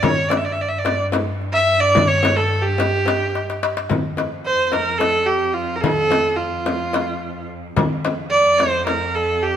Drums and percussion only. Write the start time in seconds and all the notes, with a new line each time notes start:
0.03 frame drum, darbuka dum
0.30 darbuka tek, frame drum
0.85 darbuka tek, frame drum
1.12 darbuka tek, frame drum
1.41 darbuka ka
1.95 frame drum, darbuka dum
2.23 darbuka tek, frame drum
2.78 darbuka tek, frame drum
3.06 darbuka tek, frame drum
3.35 darbuka tek
3.50 darbuka ka
3.63 darbuka tek
3.77 darbuka ka
3.89 frame drum, darbuka dum
4.17 darbuka tek, frame drum
4.72 darbuka tek, frame drum
5.00 darbuka tek, frame drum
5.84 frame drum, darbuka dum
6.11 darbuka tek, frame drum
6.66 darbuka tek, frame drum
6.93 darbuka tek, frame drum
7.76 frame drum, darbuka dum
8.05 darbuka tek, frame drum
8.60 darbuka tek, frame drum
8.87 darbuka tek, frame drum